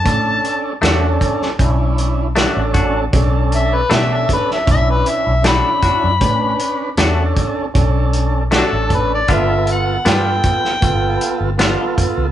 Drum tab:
HH |x-x-x-x-x-x-x-x-|x-x-x-x-x-x-x-x-|x-x-x-x-x-x-x-x-|x-x-x-x-x-x-x-x-|
SD |----o--o----o---|----o--o----o---|----o-------o---|----o--o----o---|
BD |o-----o-o-----o-|o-----o-o-----o-|o-----o-o-----o-|o-----o-o-----o-|